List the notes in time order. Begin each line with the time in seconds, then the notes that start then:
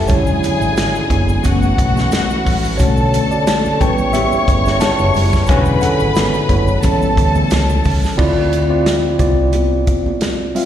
Already playing: G3 B3 C#4 G4 A4 B4 E5 F#5 G5
0.08 E1 D3 F#3 G#3 C#4 E4 G#4 C#5 G#5, kick, closed hi-hat, low conga, shaker
0.27 shaker
0.43 closed hi-hat, muted conga, shaker
0.61 G#1, shaker
0.77 snare, closed hi-hat, shaker
0.95 shaker
1.10 F#1, kick, closed hi-hat, muted conga, high conga, low conga
1.29 shaker
1.44 F#1 E3 A3 C#4 F#4 F#5, kick, closed hi-hat, high conga, shaker
1.62 shaker
1.78 B1, kick, closed hi-hat, muted conga
1.96 snare, high conga, shaker
2.11 snare, closed hi-hat, muted conga, shaker
2.30 shaker
2.45 A1, kick, open hi-hat, muted conga, low conga, shaker
2.65 shaker
2.78 B1 D3 A3 B3 C#4 F#4 A4 C#5 A5, kick, closed hi-hat, low conga, shaker
2.97 shaker
3.14 closed hi-hat, shaker
3.31 F#4 D5, muted fingered electric bass stroke, shaker
3.47 snare, closed hi-hat, muted conga, shaker
3.65 muted fingered electric bass stroke, shaker
3.80 A1 C#3 G3 B3 C#4 E4 B4 C#5 G5 C#6, kick, closed hi-hat, muted conga, high conga, low conga
3.98 shaker
4.13 G4 E5, closed hi-hat, high conga, shaker
4.32 muted fingered electric bass stroke, shaker
4.48 G1, kick, closed hi-hat, muted conga
4.66 snare, high conga, shaker
4.80 C#5 A5, snare, closed hi-hat, muted conga, shaker
4.99 F#1, shaker
5.14 F#1, open hi-hat, muted conga, low conga, shaker
5.33 kick, snare, shaker
5.46 E1 D3 F#3 B3 C#4 F#4 G#4 B4 G#5 B5, kick, closed hi-hat, muted conga, low conga, shaker
5.50 C#4 B4
5.65 shaker
5.81 A4 F#5, closed hi-hat, muted conga, shaker
5.99 G#1, shaker
6.15 snare, closed hi-hat, muted conga, high conga, shaker
6.34 shaker
6.49 F#1 E4 C#5, kick, closed hi-hat, muted conga, high conga, low conga
6.67 shaker
6.82 A1 C#3 E3 G3 A3 C#4 A4 A5, kick, closed hi-hat, high conga, shaker
7.02 shaker
7.17 D2, kick, closed hi-hat
7.35 high conga, shaker
7.50 C#2, snare, closed hi-hat, shaker
7.69 shaker
7.84 C#2, kick, open hi-hat, low conga, shaker
8.04 snare, shaker
8.17 D2 C4 E4 F4 D5, kick, crash
8.53 closed hi-hat
8.69 C4 E4 F4 D5
8.86 snare, closed hi-hat
9.18 C2 C4 E4 F4 D5, kick, closed hi-hat, high conga, low conga
9.52 closed hi-hat, high conga
9.87 kick, closed hi-hat, muted conga
10.06 high conga
10.21 snare, closed hi-hat, muted conga
10.55 C4 F4 E5 F5, open hi-hat, muted conga, low conga